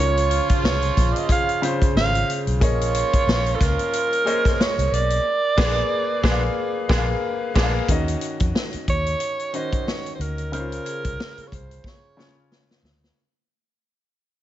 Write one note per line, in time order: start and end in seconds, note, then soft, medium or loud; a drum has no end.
0.00 0.39 C#2 loud
0.00 0.80 C#3 medium
0.00 2.24 F3 medium
0.00 0.80 C#4 medium
0.00 2.24 C#4 medium
0.00 0.81 F4 medium
0.00 2.24 F4 medium
0.00 0.60 C#5 loud
0.06 0.84 C#5 medium
0.17 closed hi-hat medium
0.30 1.83 F4 medium
0.30 closed hi-hat medium
0.49 kick medium
0.49 closed hi-hat medium
0.56 1.28 G#4 medium
0.63 0.89 C2 loud
0.63 1.14 C#5 loud
0.63 snare loud
0.82 closed hi-hat medium
0.97 1.12 A#1 loud
0.97 kick medium
0.97 snare soft
0.97 closed hi-hat medium
1.12 1.19 D5 medium
1.12 closed hi-hat medium
1.18 1.30 D#5 medium
1.29 2.82 G#4 medium
1.29 1.68 F5 loud
1.29 kick loud
1.29 closed hi-hat medium
1.49 closed hi-hat medium
1.62 2.23 C#3 medium
1.62 2.24 C#4 medium
1.62 2.24 F4 medium
1.62 2.24 C5 medium
1.62 closed hi-hat medium
1.82 kick medium
1.82 closed hi-hat medium
1.95 2.21 G#1 loud
1.95 2.45 F5 loud
1.95 snare loud
2.15 closed hi-hat medium
2.30 closed hi-hat medium
2.47 2.61 B1 loud
2.47 closed hi-hat medium
2.60 3.02 A#1 loud
2.60 4.88 F3 medium
2.60 3.43 A#3 medium
2.60 4.88 C#4 medium
2.60 4.88 F4 medium
2.60 3.44 G#4 medium
2.60 3.44 A#4 medium
2.60 3.44 C#5 medium
2.60 3.57 C#5 loud
2.60 3.44 D#5 medium
2.60 kick loud
2.60 closed hi-hat medium
2.81 closed hi-hat medium
2.94 closed hi-hat loud
3.13 kick medium
3.13 closed hi-hat medium
3.27 3.53 A#1 loud
3.27 snare loud
3.46 closed hi-hat medium
3.55 3.64 A4 medium
3.61 3.75 C#2 loud
3.61 4.63 A#4 loud
3.61 kick medium
3.61 snare soft
3.61 closed hi-hat medium
3.79 closed hi-hat medium
3.93 closed hi-hat medium
4.13 closed hi-hat medium
4.25 4.87 A#3 medium
4.25 4.87 G#4 medium
4.25 4.87 C5 medium
4.25 4.87 C#5 medium
4.25 4.87 D#5 medium
4.25 closed hi-hat medium
4.45 kick medium
4.45 snare soft
4.45 closed hi-hat medium
4.58 5.53 A#4 medium
4.58 4.96 C#5 loud
4.58 snare loud
4.78 4.89 C2 medium
4.78 closed hi-hat medium
4.92 5.18 B1 medium
4.92 7.24 D5 loud
4.92 closed hi-hat medium
5.10 closed hi-hat medium
5.57 5.81 A#1 medium
5.57 5.75 G#3 medium
5.57 5.80 A#3 medium
5.57 5.75 B3 medium
5.57 5.75 D4 medium
5.57 5.81 G#4 loud
5.57 5.81 B4 loud
5.57 5.81 D5 medium
5.57 kick loud
5.57 snare loud
5.57 crash loud
5.91 7.44 G#4 medium
6.23 6.47 A#1 loud
6.23 6.41 G#3 loud
6.23 6.47 A#3 medium
6.23 6.41 B3 medium
6.23 6.41 D4 medium
6.23 6.47 G#4 loud
6.23 6.47 B4 loud
6.23 kick loud
6.23 snare loud
6.31 6.51 F5 medium
6.89 7.13 A#1 loud
6.89 7.07 G#3 loud
6.89 7.12 A#3 loud
6.89 7.07 B3 medium
6.89 7.07 D4 medium
6.89 7.13 G#4 loud
6.89 7.13 B4 loud
6.89 kick loud
6.89 snare loud
6.98 7.18 F5 loud
7.54 7.79 A#1 loud
7.54 7.73 G#3 loud
7.54 7.78 A#3 loud
7.54 7.73 B3 medium
7.54 7.73 D4 medium
7.54 7.79 G#4 medium
7.54 7.79 B4 medium
7.54 kick loud
7.54 snare loud
7.54 crash medium
7.63 7.83 F5 loud
7.88 8.14 D#2 loud
7.88 8.71 D#3 medium
7.88 8.71 C#4 medium
7.88 8.72 F#4 medium
7.88 8.72 D#5 medium
7.88 kick loud
7.88 closed hi-hat medium
8.08 closed hi-hat medium
8.21 9.75 F#4 medium
8.21 closed hi-hat medium
8.40 8.52 F2 medium
8.40 kick medium
8.40 closed hi-hat medium
8.55 snare loud
8.73 muted fingered electric bass stroke soft
8.73 closed hi-hat medium
8.88 9.14 D#2 medium
8.88 9.57 C#5 loud
8.88 kick loud
8.88 closed hi-hat medium
9.06 closed hi-hat medium
9.20 closed hi-hat loud
9.39 closed hi-hat soft
9.53 10.14 D#3 medium
9.53 10.15 C#4 medium
9.53 10.15 F#4 medium
9.53 9.90 C5 loud
9.53 10.15 D#5 medium
9.53 closed hi-hat medium
9.73 kick medium
9.73 closed hi-hat medium
9.88 10.14 C#5 loud
9.88 snare loud
10.06 closed hi-hat medium
10.15 10.23 C5 medium
10.19 10.52 D2 medium
10.19 10.53 A#4 medium
10.19 closed hi-hat medium
10.38 closed hi-hat medium
10.52 10.78 C#2 loud
10.52 11.35 C#3 medium
10.52 11.35 C#4 medium
10.52 10.60 D#4 soft
10.52 11.49 A#4 loud
10.52 11.36 C5 medium
10.52 closed hi-hat medium
10.60 11.39 F4 medium
10.72 closed hi-hat medium
10.86 12.38 G#4 medium
10.86 closed hi-hat medium
11.04 11.16 C2 medium
11.04 kick medium
11.04 closed hi-hat medium
11.20 snare loud
11.38 muted fingered electric bass stroke soft
11.38 closed hi-hat medium
11.47 11.56 C#5 medium
11.52 11.78 C2 loud
11.52 11.89 C5 medium
11.52 kick medium
11.52 closed hi-hat medium
11.71 closed hi-hat medium
11.84 12.52 C#5 medium
11.84 kick medium
11.84 snare medium
12.17 12.78 C#3 medium
12.17 12.79 C#4 medium
12.17 12.79 F4 medium
12.17 12.79 C#5 medium
12.17 snare medium
12.52 snare medium
12.71 snare medium
12.83 13.09 D2 medium
12.83 snare medium
13.04 snare medium